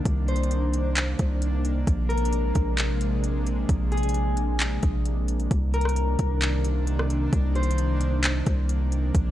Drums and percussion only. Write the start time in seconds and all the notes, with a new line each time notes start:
0.05 kick, closed hi-hat
0.28 closed hi-hat
0.36 closed hi-hat
0.43 closed hi-hat
0.51 closed hi-hat
0.73 closed hi-hat
0.96 clap, closed hi-hat
1.19 kick, closed hi-hat
1.42 closed hi-hat
1.65 closed hi-hat
1.87 kick, closed hi-hat
2.10 closed hi-hat
2.18 closed hi-hat
2.25 closed hi-hat
2.33 closed hi-hat
2.55 kick, closed hi-hat
2.78 clap, closed hi-hat
3.01 closed hi-hat
3.24 closed hi-hat
3.47 closed hi-hat
3.69 kick, closed hi-hat
3.92 closed hi-hat
3.97 closed hi-hat
4.03 closed hi-hat
4.09 closed hi-hat
4.14 closed hi-hat
4.37 closed hi-hat
4.60 clap, closed hi-hat
4.83 kick, closed hi-hat
5.05 closed hi-hat
5.28 closed hi-hat
5.40 closed hi-hat
5.51 kick, closed hi-hat
5.74 closed hi-hat
5.81 closed hi-hat
5.85 cross-stick, closed hi-hat
5.96 closed hi-hat
6.19 kick, closed hi-hat
6.42 clap, closed hi-hat
6.64 closed hi-hat
6.87 closed hi-hat
6.99 cross-stick
7.10 closed hi-hat
7.33 kick, closed hi-hat
7.55 closed hi-hat
7.63 closed hi-hat
7.71 closed hi-hat
7.78 closed hi-hat
8.01 closed hi-hat
8.24 clap, closed hi-hat
8.46 kick, closed hi-hat
8.69 closed hi-hat
8.92 closed hi-hat
9.15 kick, closed hi-hat